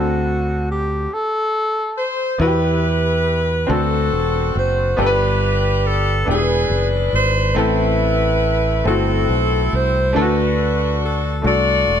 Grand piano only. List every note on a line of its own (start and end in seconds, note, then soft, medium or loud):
0.00 1.06 D3 soft
0.00 0.58 C4 medium
0.00 0.59 D4 medium
0.00 0.59 F#4 medium
0.00 0.63 A4 medium
2.38 3.65 E3 medium
2.38 3.17 B3 medium
2.38 3.18 E4 medium
2.38 2.47 F#4 soft
2.38 3.19 B4 medium
2.47 3.21 G4 medium
3.67 4.94 D3 medium
3.67 4.46 C4 medium
3.67 4.46 D4 medium
3.67 4.47 F#4 soft
3.67 4.48 A4 medium
4.97 6.23 G2 medium
4.97 5.75 B3 medium
4.97 5.76 D4 medium
4.97 5.77 G4 medium
4.97 5.05 A4 medium
5.06 5.80 B4 medium
6.25 7.52 E3 medium
6.25 7.04 B3 medium
6.25 7.05 D4 medium
6.25 7.05 E4 medium
6.25 6.34 G4 medium
6.35 7.09 G#4 medium
7.55 8.82 A2 medium
7.55 8.34 A3 medium
7.55 8.34 C4 medium
7.55 8.35 E4 medium
7.55 8.35 A4 medium
8.84 9.63 A3 medium
8.84 9.64 C4 medium
8.84 9.64 E4 medium
8.84 9.65 F#4 medium
10.13 11.40 D3 medium
10.13 10.92 A3 medium
10.13 10.93 D4 medium
10.13 10.21 E4 medium
10.13 10.94 A4 medium
10.21 10.96 F#4 medium
11.42 12.00 A3 medium
11.42 12.00 D4 soft
11.42 12.00 F#4 soft
11.42 12.00 A4 medium